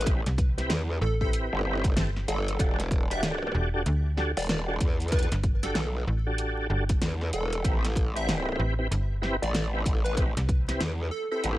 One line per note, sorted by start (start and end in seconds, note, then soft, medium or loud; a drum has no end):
0.00 0.23 A1 loud
0.00 closed hi-hat medium
0.06 0.21 C4 medium
0.06 0.21 E4 medium
0.06 0.21 G4 medium
0.06 0.21 B4 medium
0.06 kick loud
0.06 closed hi-hat medium
0.26 0.68 C2 loud
0.26 snare soft
0.26 closed hi-hat medium
0.38 kick loud
0.38 closed hi-hat soft
0.57 0.73 C4 loud
0.57 0.73 E4 medium
0.57 0.73 G4 medium
0.57 0.73 B4 loud
0.57 snare soft
0.57 closed hi-hat medium
0.69 0.99 E2 medium
0.69 snare loud
0.69 closed hi-hat medium
1.01 1.50 A1 loud
1.01 1.17 A4 loud
1.21 1.62 C4 medium
1.21 1.62 E4 medium
1.21 1.62 G4 medium
1.21 1.34 A4 medium
1.21 1.62 B4 medium
1.21 kick medium
1.33 closed hi-hat medium
1.53 1.94 G1 loud
1.64 1.86 C4 loud
1.64 1.86 E4 medium
1.64 1.86 G4 medium
1.64 1.86 B4 loud
1.84 kick loud
1.84 closed hi-hat medium
1.96 2.26 G1 medium
1.96 2.11 C4 medium
1.96 2.10 E4 medium
1.96 2.10 G4 medium
1.96 2.11 A4 medium
1.96 snare loud
1.96 closed hi-hat medium
2.16 snare soft
2.28 2.58 G1 loud
2.28 2.67 A4 loud
2.28 closed hi-hat medium
2.48 closed hi-hat soft
2.59 3.52 E1 loud
2.59 2.81 D4 medium
2.59 2.81 F#4 medium
2.59 2.81 G4 medium
2.59 2.81 A4 medium
2.59 kick loud
2.59 closed hi-hat medium
2.80 snare soft
2.80 closed hi-hat soft
2.91 kick loud
2.91 closed hi-hat soft
3.10 3.69 D4 medium
3.10 3.69 F#4 medium
3.10 3.69 G4 medium
3.10 3.69 A4 medium
3.10 3.24 E5 loud
3.10 closed hi-hat medium
3.23 snare loud
3.23 closed hi-hat medium
3.55 3.84 E1 loud
3.74 3.83 D4 loud
3.74 3.83 F#4 medium
3.74 3.83 G4 medium
3.74 3.83 A4 loud
3.86 4.34 D2 loud
3.86 closed hi-hat medium
4.17 4.32 D4 loud
4.17 4.32 F#4 medium
4.17 4.32 G4 medium
4.17 4.32 A4 loud
4.17 snare soft
4.37 4.79 E1 loud
4.37 4.45 D5 medium
4.37 closed hi-hat soft
4.39 closed hi-hat soft
4.40 closed hi-hat soft
4.42 closed hi-hat soft
4.44 closed hi-hat soft
4.46 closed hi-hat soft
4.47 snare loud
4.47 closed hi-hat soft
4.49 4.62 D5 medium
4.49 closed hi-hat medium
4.68 4.77 D4 medium
4.68 4.77 F#4 medium
4.68 4.77 G4 medium
4.68 4.77 A4 loud
4.80 5.29 E2 loud
4.80 kick loud
4.80 closed hi-hat medium
5.00 closed hi-hat soft
5.08 5.26 F#4 medium
5.08 5.26 A4 medium
5.08 kick loud
5.08 closed hi-hat soft
5.12 5.27 D4 medium
5.12 5.27 G4 medium
5.12 5.33 B4 medium
5.12 closed hi-hat medium
5.19 closed hi-hat soft
5.23 closed hi-hat soft
5.32 5.74 G1 loud
5.32 snare soft
5.32 closed hi-hat soft
5.43 kick loud
5.43 closed hi-hat soft
5.63 5.78 D4 loud
5.63 5.78 F#4 medium
5.63 5.78 G4 medium
5.63 5.78 A4 loud
5.63 5.71 A4 medium
5.63 snare soft
5.63 closed hi-hat medium
5.75 6.05 B1 medium
5.75 5.88 A4 medium
5.75 snare loud
5.75 closed hi-hat medium
6.07 6.68 A1 medium
6.26 6.67 D4 medium
6.26 6.67 F#4 medium
6.26 6.67 G4 medium
6.26 6.67 A4 medium
6.38 closed hi-hat medium
6.70 7.00 G1 medium
6.70 6.84 D4 medium
6.70 6.84 F#4 medium
6.70 6.84 G4 medium
6.70 6.84 A4 medium
6.89 kick loud
6.89 closed hi-hat medium
7.02 7.31 E2 loud
7.02 snare loud
7.02 closed hi-hat medium
7.21 snare soft
7.33 7.63 E1 loud
7.33 7.73 A4 loud
7.33 closed hi-hat medium
7.53 closed hi-hat medium
7.64 8.57 A1 loud
7.64 7.86 C4 medium
7.64 7.86 E4 medium
7.64 7.86 G4 medium
7.64 7.86 B4 medium
7.64 kick loud
7.64 closed hi-hat medium
7.85 snare soft
7.85 closed hi-hat medium
7.86 snare soft
7.88 snare soft
7.90 snare soft
7.92 snare soft
7.93 snare soft
7.95 kick loud
7.95 snare soft
7.95 closed hi-hat soft
8.15 8.74 C4 medium
8.15 8.74 E4 medium
8.15 8.74 G4 medium
8.15 8.74 B4 medium
8.15 8.29 E5 loud
8.15 closed hi-hat medium
8.29 snare loud
8.29 closed hi-hat medium
8.59 8.89 A1 medium
8.79 8.88 C4 loud
8.79 8.88 E4 medium
8.79 8.88 G4 loud
8.79 8.88 B4 loud
8.91 9.39 G1 loud
8.91 closed hi-hat medium
9.22 9.37 C4 loud
9.22 9.37 E4 loud
9.22 9.37 G4 medium
9.22 9.37 B4 loud
9.22 snare medium
9.42 9.84 A1 loud
9.42 9.50 D5 medium
9.42 closed hi-hat medium
9.54 9.67 D5 medium
9.54 snare loud
9.54 closed hi-hat medium
9.73 9.82 C4 medium
9.73 9.82 E4 medium
9.73 9.82 G4 medium
9.73 9.82 B4 medium
9.86 10.34 A1 loud
9.86 kick loud
9.86 closed hi-hat medium
10.04 10.18 B4 loud
10.04 closed hi-hat medium
10.17 10.31 C4 medium
10.17 10.32 E4 medium
10.17 10.31 G4 medium
10.17 10.32 B4 medium
10.17 kick loud
10.17 closed hi-hat medium
10.37 10.79 C2 loud
10.37 snare soft
10.37 closed hi-hat medium
10.49 kick loud
10.49 closed hi-hat soft
10.68 10.84 C4 loud
10.68 10.84 E4 medium
10.68 10.84 G4 medium
10.68 10.84 B4 loud
10.68 snare soft
10.68 closed hi-hat medium
10.81 11.10 E2 loud
10.81 snare loud
10.81 closed hi-hat medium
11.11 11.27 A4 loud
11.31 11.58 C4 medium
11.31 11.58 E4 medium
11.31 11.58 G4 medium
11.31 11.45 A4 medium
11.31 11.58 B4 medium
11.44 11.58 A1 loud
11.44 closed hi-hat medium